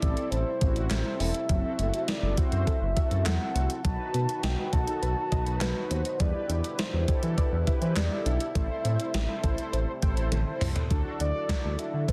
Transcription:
Already playing: french horn section C3 G3 A3 E4
0.02 analog synth bass A1, analog polysynth C4 E4 A4, soft synth lead D5, kick, closed hi-hat
0.17 closed hi-hat
0.31 analog synth bass A1, soft synth lead C5, closed hi-hat
0.61 analog synth bass A1, analog polysynth C4 E4 F#4, kick, closed hi-hat
0.76 analog synth bass A1, closed hi-hat
0.91 analog synth bass A1, snare, clap, closed hi-hat
1.05 analog polysynth C4 E4 A4
1.20 analog synth bass E1, soft synth lead E5, open hi-hat
1.34 closed hi-hat
1.49 analog synth bass F#1, synth arpeggio sound F#3, french horn section F#3, analog polysynth C4 F#4 A4, kick, closed hi-hat
1.79 analog synth bass F#1, synth arpeggio sound A3, closed hi-hat
1.94 closed hi-hat
2.08 synth arpeggio sound E4, soft synth lead D5, snare, closed hi-hat
2.23 analog synth bass F#1, analog polysynth C4 F#4 A4
2.37 analog polysynth C4 F#4 C5, synth arpeggio sound F#4, soft synth lead E5, kick, closed hi-hat
2.52 analog synth bass F#2, closed hi-hat
2.67 synth arpeggio sound A4, kick, closed hi-hat
2.82 analog synth bass F#1
2.96 analog polysynth C4 F#4 A4, synth arpeggio sound E5, kick, closed hi-hat
3.11 analog synth bass F#2, closed hi-hat
3.25 analog synth bass E2, synth arpeggio sound F#3, soft synth lead F#5, snare, clap, closed hi-hat
3.40 analog polysynth C4 F#4 A4
3.55 analog synth bass C2, synth arpeggio sound A3, closed hi-hat
3.70 closed hi-hat
3.84 analog synth bass B1, french horn section B2 D#3 F#3 F#4, synth arpeggio sound F#3, analog polysynth D#4 F#4 B4, soft synth lead A5, kick, closed hi-hat
4.14 analog synth bass B2, synth arpeggio sound B3, closed hi-hat
4.29 closed hi-hat
4.43 analog synth bass B1, synth arpeggio sound D#4, soft synth lead G5, snare, closed hi-hat
4.58 analog polysynth D#4 F#4 B4
4.72 analog synth bass B1, analog polysynth D#4 F#4 A4, synth arpeggio sound F#4, soft synth lead A5, kick, closed hi-hat
4.87 closed hi-hat
5.02 analog synth bass B1, synth arpeggio sound B4, closed hi-hat
5.32 analog synth bass B1, analog polysynth D#4 F#4 B4, synth arpeggio sound D#5, kick, closed hi-hat
5.46 analog synth bass B1, closed hi-hat
5.61 analog synth bass B1, synth arpeggio sound F#3, soft synth lead B4, snare, clap, closed hi-hat
5.76 analog polysynth D#4 F#4 B4
5.90 analog synth bass D#2, synth arpeggio sound B3, soft synth lead C5, closed hi-hat
6.05 closed hi-hat
6.19 analog synth bass E2, french horn section D3 G3 E4, synth arpeggio sound G3, analog polysynth E4 G4 B4, soft synth lead D5, kick, closed hi-hat
6.49 analog synth bass E2, synth arpeggio sound D4, closed hi-hat
6.64 closed hi-hat
6.79 synth arpeggio sound E4, soft synth lead C5, snare, closed hi-hat
6.93 analog synth bass E2, analog polysynth E4 G4 B4
7.08 analog polysynth E4 G4 A4, synth arpeggio sound G4, kick, closed hi-hat
7.23 analog synth bass E3, soft synth lead B4, closed hi-hat
7.38 synth arpeggio sound D5, kick, closed hi-hat
7.52 analog synth bass E2
7.67 analog polysynth E4 G4 B4, synth arpeggio sound E5, kick, closed hi-hat
7.81 analog synth bass E3, soft synth lead C5, closed hi-hat
7.96 analog synth bass E2, synth arpeggio sound G3, soft synth lead D5, snare, clap, closed hi-hat
8.11 analog polysynth E4 G4 A4
8.26 analog synth bass B1, synth arpeggio sound D4, soft synth lead E5, closed hi-hat
8.40 closed hi-hat
8.55 analog synth bass A1, french horn section C3 A3, synth arpeggio sound A3, analog polysynth E4 A4 C5, kick, closed hi-hat
8.85 analog synth bass A2, synth arpeggio sound C4, closed hi-hat
9.00 closed hi-hat
9.14 analog synth bass A1, synth arpeggio sound G4, snare, closed hi-hat
9.29 analog polysynth E4 A4 C5
9.43 analog synth bass A1, analog polysynth E4 A4 C5, synth arpeggio sound A4, kick, closed hi-hat
9.58 closed hi-hat
9.73 analog synth bass A1, synth arpeggio sound C5, closed hi-hat
10.02 analog synth bass A1, analog polysynth E4 A4 C5, synth arpeggio sound G5, kick, closed hi-hat
10.17 analog synth bass A1, closed hi-hat
10.32 analog synth bass A1, synth arpeggio sound A3, closed hi-hat, high tom
10.46 analog polysynth E4 A4 C5
10.61 analog synth bass C2, synth arpeggio sound C4, mid tom, open hi-hat
10.76 closed hi-hat, floor tom
10.90 analog synth bass D2, french horn section D3 F#3 A3 E4, analog polysynth D4 F#4 A4, kick, closed hi-hat
11.20 analog synth bass D2, soft synth lead D5, closed hi-hat
11.35 analog polysynth D4 F#4 A4
11.49 kick, snare, closed hi-hat
11.64 analog synth bass D2
11.79 soft synth lead E5, closed hi-hat
11.94 analog synth bass D3
12.08 soft synth lead B4, kick, closed hi-hat

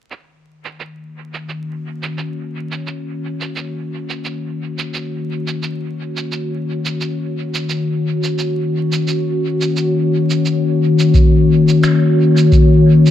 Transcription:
0.11 ambient pad D#3, cabasa
0.61 ambient pad A#3, cabasa
0.80 ambient pad F#4, cabasa
1.07 ambient pad C#4
1.34 cabasa
1.40 ambient pad C#5
1.49 cabasa
2.03 cabasa
2.18 cabasa
2.72 cabasa
2.87 cabasa
3.41 cabasa
3.56 cabasa
4.10 cabasa
4.25 cabasa
4.79 cabasa
4.94 cabasa
5.48 cabasa
5.63 cabasa
6.17 cabasa
6.32 cabasa
6.86 cabasa
7.01 cabasa
7.55 cabasa
7.70 cabasa
8.24 cabasa
8.39 cabasa
8.92 cabasa
9.08 cabasa
9.61 cabasa
9.77 cabasa
10.30 cabasa
10.46 cabasa
10.99 cabasa
11.14 kick, cabasa
11.68 cabasa
11.83 finger snap, cabasa
12.37 cabasa
12.52 kick, cabasa
13.06 cabasa

